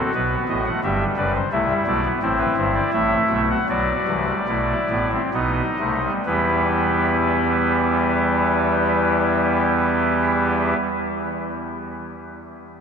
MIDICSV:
0, 0, Header, 1, 2, 480
1, 0, Start_track
1, 0, Key_signature, 1, "minor"
1, 0, Tempo, 680272
1, 1061, Time_signature, 3, 2, 24, 8
1, 1061, Tempo, 710900
1, 2021, Tempo, 774194
1, 2981, Tempo, 853485
1, 3461, Tempo, 927357
1, 3941, Tempo, 964630
1, 7201, End_track
2, 0, Start_track
2, 0, Title_t, "Pipe organ"
2, 0, Program_c, 0, 19
2, 0, Note_on_c, 0, 60, 92
2, 0, Note_on_c, 0, 66, 73
2, 0, Note_on_c, 0, 69, 64
2, 83, Note_off_c, 0, 60, 0
2, 84, Note_off_c, 0, 69, 0
2, 102, Note_on_c, 0, 47, 62
2, 104, Note_on_c, 0, 59, 91
2, 104, Note_on_c, 0, 71, 67
2, 105, Note_on_c, 0, 35, 73
2, 250, Note_off_c, 0, 47, 0
2, 251, Note_off_c, 0, 71, 0
2, 252, Note_off_c, 0, 35, 0
2, 342, Note_on_c, 0, 45, 69
2, 343, Note_on_c, 0, 33, 65
2, 345, Note_on_c, 0, 75, 70
2, 412, Note_off_c, 0, 59, 0
2, 446, Note_off_c, 0, 75, 0
2, 463, Note_on_c, 0, 78, 64
2, 466, Note_on_c, 0, 57, 72
2, 482, Note_off_c, 0, 66, 0
2, 490, Note_off_c, 0, 45, 0
2, 491, Note_off_c, 0, 33, 0
2, 565, Note_off_c, 0, 78, 0
2, 566, Note_off_c, 0, 57, 0
2, 589, Note_on_c, 0, 43, 70
2, 589, Note_on_c, 0, 76, 78
2, 590, Note_on_c, 0, 67, 85
2, 592, Note_on_c, 0, 55, 87
2, 593, Note_on_c, 0, 31, 84
2, 735, Note_off_c, 0, 43, 0
2, 735, Note_off_c, 0, 76, 0
2, 736, Note_off_c, 0, 67, 0
2, 738, Note_off_c, 0, 31, 0
2, 826, Note_on_c, 0, 30, 74
2, 826, Note_on_c, 0, 71, 88
2, 828, Note_on_c, 0, 42, 87
2, 829, Note_on_c, 0, 74, 81
2, 929, Note_off_c, 0, 74, 0
2, 952, Note_on_c, 0, 72, 70
2, 974, Note_off_c, 0, 30, 0
2, 974, Note_off_c, 0, 71, 0
2, 975, Note_off_c, 0, 42, 0
2, 1001, Note_off_c, 0, 55, 0
2, 1051, Note_off_c, 0, 72, 0
2, 1071, Note_on_c, 0, 76, 95
2, 1073, Note_on_c, 0, 57, 81
2, 1073, Note_on_c, 0, 64, 79
2, 1074, Note_on_c, 0, 48, 88
2, 1075, Note_on_c, 0, 36, 90
2, 1168, Note_off_c, 0, 57, 0
2, 1192, Note_on_c, 0, 55, 70
2, 1213, Note_off_c, 0, 76, 0
2, 1215, Note_off_c, 0, 48, 0
2, 1216, Note_off_c, 0, 36, 0
2, 1287, Note_off_c, 0, 55, 0
2, 1304, Note_on_c, 0, 35, 65
2, 1305, Note_on_c, 0, 74, 93
2, 1306, Note_on_c, 0, 57, 71
2, 1307, Note_on_c, 0, 47, 81
2, 1404, Note_off_c, 0, 57, 0
2, 1428, Note_on_c, 0, 59, 85
2, 1449, Note_off_c, 0, 35, 0
2, 1450, Note_off_c, 0, 74, 0
2, 1451, Note_off_c, 0, 47, 0
2, 1474, Note_off_c, 0, 64, 0
2, 1525, Note_off_c, 0, 59, 0
2, 1547, Note_on_c, 0, 45, 73
2, 1547, Note_on_c, 0, 60, 80
2, 1548, Note_on_c, 0, 64, 80
2, 1549, Note_on_c, 0, 33, 69
2, 1549, Note_on_c, 0, 72, 84
2, 1646, Note_off_c, 0, 72, 0
2, 1657, Note_on_c, 0, 71, 94
2, 1693, Note_off_c, 0, 33, 0
2, 1693, Note_off_c, 0, 45, 0
2, 1760, Note_off_c, 0, 71, 0
2, 1778, Note_on_c, 0, 72, 87
2, 1780, Note_on_c, 0, 31, 76
2, 1781, Note_on_c, 0, 43, 77
2, 1881, Note_off_c, 0, 72, 0
2, 1899, Note_on_c, 0, 74, 67
2, 1931, Note_off_c, 0, 31, 0
2, 1931, Note_off_c, 0, 43, 0
2, 1960, Note_off_c, 0, 60, 0
2, 2004, Note_off_c, 0, 74, 0
2, 2022, Note_on_c, 0, 33, 84
2, 2024, Note_on_c, 0, 57, 84
2, 2025, Note_on_c, 0, 45, 85
2, 2026, Note_on_c, 0, 76, 101
2, 2164, Note_off_c, 0, 33, 0
2, 2166, Note_off_c, 0, 45, 0
2, 2252, Note_on_c, 0, 47, 82
2, 2255, Note_on_c, 0, 35, 81
2, 2323, Note_off_c, 0, 76, 0
2, 2367, Note_off_c, 0, 64, 0
2, 2378, Note_on_c, 0, 78, 96
2, 2398, Note_off_c, 0, 47, 0
2, 2400, Note_off_c, 0, 35, 0
2, 2424, Note_off_c, 0, 57, 0
2, 2476, Note_off_c, 0, 78, 0
2, 2492, Note_on_c, 0, 66, 88
2, 2494, Note_on_c, 0, 54, 81
2, 2495, Note_on_c, 0, 35, 84
2, 2495, Note_on_c, 0, 47, 89
2, 2496, Note_on_c, 0, 74, 79
2, 2643, Note_off_c, 0, 35, 0
2, 2643, Note_off_c, 0, 54, 0
2, 2644, Note_off_c, 0, 47, 0
2, 2734, Note_on_c, 0, 48, 72
2, 2737, Note_on_c, 0, 36, 77
2, 2739, Note_on_c, 0, 52, 72
2, 2842, Note_off_c, 0, 52, 0
2, 2865, Note_on_c, 0, 55, 70
2, 2889, Note_off_c, 0, 48, 0
2, 2891, Note_off_c, 0, 36, 0
2, 2915, Note_off_c, 0, 66, 0
2, 2969, Note_off_c, 0, 55, 0
2, 2984, Note_on_c, 0, 47, 66
2, 2985, Note_on_c, 0, 35, 76
2, 2985, Note_on_c, 0, 64, 76
2, 2986, Note_on_c, 0, 57, 71
2, 3129, Note_off_c, 0, 47, 0
2, 3130, Note_off_c, 0, 35, 0
2, 3130, Note_off_c, 0, 57, 0
2, 3219, Note_on_c, 0, 33, 79
2, 3220, Note_on_c, 0, 59, 77
2, 3221, Note_on_c, 0, 45, 77
2, 3322, Note_off_c, 0, 59, 0
2, 3336, Note_off_c, 0, 74, 0
2, 3344, Note_on_c, 0, 60, 65
2, 3370, Note_off_c, 0, 33, 0
2, 3371, Note_off_c, 0, 45, 0
2, 3396, Note_off_c, 0, 64, 0
2, 3447, Note_off_c, 0, 60, 0
2, 3465, Note_on_c, 0, 75, 78
2, 3466, Note_on_c, 0, 35, 83
2, 3467, Note_on_c, 0, 47, 83
2, 3468, Note_on_c, 0, 59, 81
2, 3468, Note_on_c, 0, 63, 90
2, 3610, Note_off_c, 0, 35, 0
2, 3611, Note_off_c, 0, 47, 0
2, 3611, Note_off_c, 0, 59, 0
2, 3701, Note_on_c, 0, 48, 77
2, 3701, Note_on_c, 0, 57, 78
2, 3702, Note_on_c, 0, 36, 79
2, 3803, Note_off_c, 0, 57, 0
2, 3821, Note_on_c, 0, 55, 65
2, 3851, Note_off_c, 0, 48, 0
2, 3852, Note_off_c, 0, 36, 0
2, 3876, Note_off_c, 0, 75, 0
2, 3878, Note_off_c, 0, 63, 0
2, 3926, Note_off_c, 0, 55, 0
2, 3941, Note_on_c, 0, 55, 65
2, 3943, Note_on_c, 0, 40, 72
2, 3943, Note_on_c, 0, 52, 72
2, 3943, Note_on_c, 0, 64, 66
2, 3945, Note_on_c, 0, 71, 76
2, 3957, Note_on_c, 0, 59, 67
2, 3959, Note_on_c, 0, 67, 68
2, 6170, Note_off_c, 0, 55, 0
2, 6172, Note_off_c, 0, 40, 0
2, 6172, Note_off_c, 0, 52, 0
2, 6172, Note_off_c, 0, 64, 0
2, 6174, Note_off_c, 0, 71, 0
2, 6186, Note_off_c, 0, 59, 0
2, 6188, Note_off_c, 0, 67, 0
2, 7201, End_track
0, 0, End_of_file